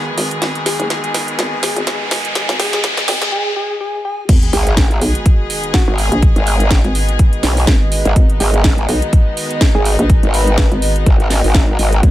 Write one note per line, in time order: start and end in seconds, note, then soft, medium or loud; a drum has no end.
0.00 3.28 D#3 medium
0.00 3.28 G#3 medium
0.00 3.28 B3 medium
0.00 3.32 F#4 medium
0.00 3.28 G#4 medium
0.00 3.32 B4 medium
0.00 3.32 D#5 medium
0.00 riser medium
0.18 0.40 G#1 loud
0.18 open hi-hat loud
0.31 closed hi-hat medium
0.42 0.77 G#1 loud
0.42 snare medium
0.42 closed hi-hat medium
0.55 closed hi-hat soft
0.66 0.84 G#4 medium
0.66 snare medium
0.66 open hi-hat loud
0.80 1.13 F#1 loud
0.80 closed hi-hat medium
0.90 snare medium
0.90 closed hi-hat medium
1.04 closed hi-hat soft
1.14 snare medium
1.14 open hi-hat loud
1.28 closed hi-hat medium
1.39 1.74 G#1 loud
1.39 snare medium
1.39 closed hi-hat medium
1.63 1.80 G#4 medium
1.63 snare medium
1.63 open hi-hat loud
1.76 1.98 G#1 medium
1.76 closed hi-hat soft
1.87 snare medium
1.87 closed hi-hat medium
2.11 snare medium
2.11 open hi-hat loud
2.25 closed hi-hat medium
2.35 snare medium
2.35 closed hi-hat medium
2.49 2.82 G#1 loud
2.49 snare medium
2.49 closed hi-hat soft
2.60 2.77 G#4 medium
2.60 snare medium
2.60 open hi-hat loud
2.73 snare medium
2.73 closed hi-hat medium
2.84 snare loud
2.84 closed hi-hat medium
2.97 snare medium
2.97 closed hi-hat soft
3.08 3.19 G#1 loud
3.08 3.26 G#4 medium
3.08 snare loud
3.08 open hi-hat loud
3.22 snare medium
3.22 closed hi-hat medium
3.32 3.50 G#4 medium
3.56 3.74 G#4 medium
3.81 3.98 G#4 loud
4.05 4.22 G#4 loud
4.29 4.51 G#1 loud
4.29 12.11 D#3 medium
4.29 12.11 G#3 medium
4.29 12.11 B3 medium
4.29 12.11 F#4 medium
4.29 8.15 G#4 medium
4.29 kick loud
4.29 closed hi-hat medium
4.29 crash loud
4.29 sub drop medium
4.42 closed hi-hat soft
4.50 5.00 G#1 loud
4.50 4.71 G#4 loud
4.50 12.11 D#5 medium
4.50 open hi-hat loud
4.57 12.11 B4 medium
4.67 closed hi-hat medium
4.77 kick loud
4.77 snare loud
4.77 closed hi-hat medium
4.91 closed hi-hat soft
5.01 5.13 B1 loud
5.01 open hi-hat loud
5.15 closed hi-hat medium
5.26 kick loud
5.26 closed hi-hat medium
5.50 open hi-hat loud
5.63 closed hi-hat medium
5.74 5.83 F#4 medium
5.74 kick loud
5.74 snare loud
5.74 closed hi-hat medium
5.88 6.10 G#1 loud
5.88 5.94 F#4 medium
5.98 open hi-hat loud
6.12 6.34 A#1 loud
6.12 closed hi-hat medium
6.22 kick loud
6.22 closed hi-hat medium
6.36 6.82 G#1 medium
6.36 closed hi-hat soft
6.47 open hi-hat loud
6.60 closed hi-hat medium
6.71 kick loud
6.71 snare loud
6.71 closed hi-hat medium
6.84 7.18 G#1 loud
6.84 closed hi-hat soft
6.95 open hi-hat loud
7.09 closed hi-hat medium
7.19 kick loud
7.19 closed hi-hat medium
7.33 closed hi-hat soft
7.43 7.66 B1 loud
7.43 snare medium
7.43 open hi-hat loud
7.57 open hi-hat medium
7.67 8.03 G#1 loud
7.67 kick loud
7.67 snare loud
7.67 closed hi-hat medium
7.92 open hi-hat loud
8.05 8.14 G#1 loud
8.05 closed hi-hat medium
8.16 8.39 G#1 loud
8.16 12.02 D#4 medium
8.16 kick loud
8.16 closed hi-hat medium
8.30 closed hi-hat soft
8.40 8.87 G#1 loud
8.40 8.58 G#4 medium
8.40 open hi-hat loud
8.54 closed hi-hat medium
8.64 kick loud
8.64 snare loud
8.64 closed hi-hat medium
8.78 closed hi-hat soft
8.89 9.00 B1 loud
8.89 open hi-hat loud
9.02 closed hi-hat medium
9.13 kick loud
9.13 closed hi-hat medium
9.37 open hi-hat loud
9.51 closed hi-hat medium
9.61 kick loud
9.61 snare loud
9.61 closed hi-hat medium
9.75 9.97 G#1 loud
9.75 9.82 G#4 medium
9.85 9.94 G#4 medium
9.85 open hi-hat loud
9.99 10.21 A#1 loud
9.99 closed hi-hat medium
10.10 kick loud
10.10 closed hi-hat medium
10.23 10.69 G#1 medium
10.23 closed hi-hat soft
10.34 10.72 B4 loud
10.34 open hi-hat loud
10.47 closed hi-hat soft
10.58 kick loud
10.58 snare loud
10.58 closed hi-hat medium
10.72 11.05 G#1 loud
10.72 closed hi-hat soft
10.82 open hi-hat loud
10.96 closed hi-hat soft
11.06 11.42 G#1 loud
11.06 kick loud
11.06 closed hi-hat medium
11.20 closed hi-hat soft
11.30 snare medium
11.30 open hi-hat loud
11.44 11.77 G#1 medium
11.44 open hi-hat medium
11.55 kick loud
11.55 snare loud
11.55 closed hi-hat medium
11.79 12.01 G#1 medium
11.79 open hi-hat loud
11.93 closed hi-hat soft
12.03 12.11 G#1 loud
12.03 12.11 G#4 medium
12.03 kick loud
12.03 closed hi-hat medium